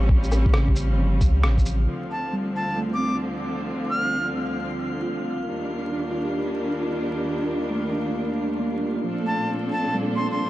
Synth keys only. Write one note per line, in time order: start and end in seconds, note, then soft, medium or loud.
0.00 1.90 A3 medium
0.54 1.60 C#3 medium
0.99 2.05 F3 medium
2.33 3.39 G3 medium
2.78 3.84 A3 medium
2.98 4.00 C4 soft
5.02 5.65 F4 medium
5.92 6.98 D4 soft
6.11 6.80 F4 soft
6.25 7.25 G4 soft
6.81 7.87 F4 medium
7.26 8.32 D4 medium
7.70 8.76 A3 soft
8.59 9.23 A#3 soft
9.04 10.10 F3 soft
9.24 10.26 A3 soft
9.94 10.50 G3 medium
10.13 10.50 A#3 soft